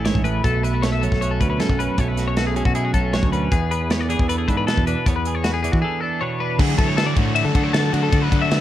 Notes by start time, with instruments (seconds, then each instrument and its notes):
Already playing: fingered electric bass A1, clean electric guitar A2 E3 C#4 E4 G#4
0.05 clean electric guitar G#2 C#5, snare, closed hi-hat
0.15 fingered electric bass A1, kick
0.24 clean electric guitar A2 B4, closed hi-hat
0.44 fingered electric bass B1, clean electric guitar B2 A3 A4, kick, closed hi-hat
0.63 clean electric guitar E4 B4, closed hi-hat
0.74 clean electric guitar F#4
0.82 clean electric guitar A3 C#5, snare, closed hi-hat
0.92 clean electric guitar E5
1.01 clean electric guitar F#3 C#4 A4, closed hi-hat
1.12 fingered electric bass B1, kick, snare
1.21 clean electric guitar F#4 C#5, closed hi-hat
1.31 clean electric guitar A4
1.40 fingered electric bass D2, clean electric guitar C#4 B4, kick, closed hi-hat
1.50 clean electric guitar B4
1.59 clean electric guitar F#2 E4 A4, snare, closed hi-hat
1.69 fingered electric bass B1, clean electric guitar F#4, kick
1.79 clean electric guitar C#4 B4, closed hi-hat
1.98 fingered electric bass B1, clean electric guitar B2 A3 C#5, kick, closed hi-hat
2.08 clean electric guitar B4
2.17 clean electric guitar F#4, snare, closed hi-hat
2.28 clean electric guitar C#5
2.37 clean electric guitar A3 F#4, snare, closed hi-hat
2.47 clean electric guitar G#4
2.56 clean electric guitar F#3 C#4 G#4, closed hi-hat
2.65 fingered electric bass B2, clean electric guitar F#4, kick
2.75 clean electric guitar E4 G#4, closed hi-hat
2.85 clean electric guitar F#4
2.94 fingered electric bass B1, clean electric guitar C#4 A4, kick, closed hi-hat
3.13 clean electric guitar F#2 F#4 C#5, snare, closed hi-hat
3.23 fingered electric bass D2, kick
3.32 clean electric guitar C#4 B4, closed hi-hat
3.52 clean electric guitar E2 B3 G#4, fingered electric bass E2, kick, closed hi-hat
3.71 clean electric guitar G#4 B4, closed hi-hat
3.90 clean electric guitar B3 C#5, snare, closed hi-hat
4.01 clean electric guitar D5
4.09 clean electric guitar E3 D4 G#4, closed hi-hat
4.19 fingered electric bass E2, kick
4.28 clean electric guitar A4 B4, closed hi-hat
4.38 clean electric guitar G#4
4.48 fingered electric bass G#2, clean electric guitar D4 B4, kick, closed hi-hat
4.57 clean electric guitar B4
4.67 clean electric guitar B2 A4 B4, snare, closed hi-hat
4.77 fingered electric bass E2, kick
4.87 clean electric guitar D4 B4, closed hi-hat
5.06 fingered electric bass E2, clean electric guitar E2 B3 C#5, kick, closed hi-hat
5.16 clean electric guitar B4
5.25 clean electric guitar G#4, closed hi-hat
5.35 clean electric guitar C#5
5.44 clean electric guitar B3 F#4, snare, closed hi-hat
5.54 clean electric guitar G#4
5.63 clean electric guitar E3 D4 G#4, closed hi-hat
5.72 fingered electric bass E3, clean electric guitar F#4, kick
5.82 clean electric guitar G#4 A4
6.01 clean electric guitar D4 A4
6.21 clean electric guitar B2 B4 C#5
6.40 clean electric guitar D4 B4
6.59 overdriven electric guitar D3 F#3 A3 D4 F#4, fingered electric bass D3, clean electric guitar G#4, kick, crash
6.78 fingered electric bass D3, overdriven electric guitar A3 D4 F#4, clean electric guitar A4, kick, ride
6.88 clean electric guitar C#5
6.97 overdriven electric guitar F#3 A3 D4 F#4, clean electric guitar A4, snare, ride
7.06 clean electric guitar D5
7.16 fingered electric bass A2, overdriven electric guitar A3 D4 F#4, clean electric guitar C#5, kick, ride
7.35 clean electric guitar E5, ride
7.45 fingered electric bass D3, clean electric guitar A4
7.54 fingered electric bass D3, overdriven electric guitar A3 D4 F#4, kick, ride
7.64 clean electric guitar C#5
7.73 overdriven electric guitar D3 F#3 A3 D4 F#4, clean electric guitar A4, snare, ride
7.93 fingered electric bass D3, clean electric guitar F#4, ride
8.03 clean electric guitar A4
8.11 overdriven electric guitar D3 F#3 A3 D4 F#4, fingered electric bass D3, kick, ride
8.22 clean electric guitar B4
8.31 fingered electric bass D3, overdriven electric guitar A3 D4 F#4, kick, ride
8.42 clean electric guitar E5
8.50 overdriven electric guitar F#3 A3 D4 F#4, snare, ride